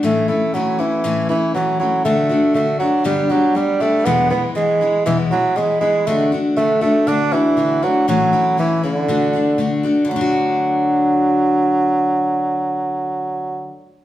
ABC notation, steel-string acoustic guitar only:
X:1
M:4/4
L:1/8
Q:1/4=119
K:D
V:1 name="Steel-string acoustic guitar"
[A,,E,A,CE] [A,CE] [E,A,CE] [A,CE] [A,,E,A,CE] [A,CE] [E,A,CE] [A,CE] | [D,A,DF] [A,DF] [D,A,DF] [A,DF] [G,,D,G,B,DG] [G,B,DG] [G,B,DG] [G,B,DG] | [E,,B,,E,^G,B,E] [E,G,B,E] [E,G,B,E] [E,G,B,E] [E,,B,,E,G,B,E] [E,G,B,E] [E,G,B,E] [E,G,B,E] | [D,A,DF] [A,DF] [D,A,DF] [A,DF] [D,A,DF] [A,DF] [D,A,DF] [A,DF] |
[A,,E,A,CE] [A,CE] [E,A,CE] [A,CE] [D,A,DF] [A,DF] [D,A,DF] [A,DF] | [D,A,DF]8- | [D,A,DF]8 |]